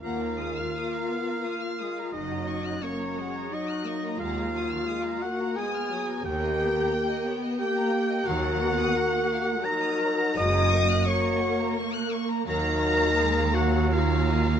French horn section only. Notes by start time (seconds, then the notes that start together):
0.00 A#4
2.13 F#3
2.83 F#3
3.52 F#3
4.19 A#3
5.23 A#3
5.57 B3
6.24 A#4
7.58 A#3
8.27 A#4
9.65 D#4
10.39 F#4
11.09 F#4
12.48 D#4
13.55 A#3
13.91 A#3